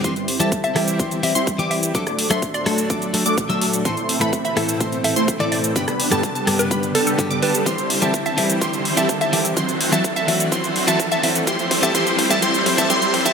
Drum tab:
HH |xxo-xxoxxxoxxxox|xxoxxxoxxxoxxxox|xxoxxxoxxxoxxxox|xxo-xxoxxxoxxxox|
SH |xx-xxx-xxx-xxx-x|xx-xxx-xxx-xxx-x|xx-xxx-xxx-xxx-x|xx-xxx-xxx-xxx-x|
SD |------r---------|-r-r--r---------|------r---------|-r-r--r---------|
BD |o---o---o---o---|o---o---o---o---|o---o---o---o---|o---o---o---o---|

HH |xxo-xxoxxxoxxxox|xxoxxxoxxxoxxxox|xxoxxxo-xxoxxxox|
SH |xx-xxx-xxx-xxx-x|xx-xxx-xxx-xxx-x|xx-xxx-xxx-xxx-x|
SD |----------------|----------------|----------------|
BD |o---o---o---o---|o---o---o---o---|o-o-o-o-o-o-o-o-|